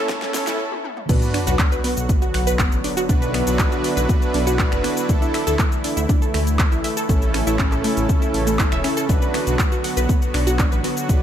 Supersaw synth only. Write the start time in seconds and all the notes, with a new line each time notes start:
Already playing: C#4 E4 A4
0.34 C#4 E4 A4
1.09 D4 F#4 B4
1.47 D4 F#4 B4
3.09 D4 F#4 B4
3.47 D4 F#4 B4
5.09 D4 E4 A4
5.47 D4 E4 A4
7.09 C#4 E4 A4
7.47 C#4 E4 A4
9.09 D4 F#4 B4
9.47 D4 F#4 B4
11.09 D4 F#4 B4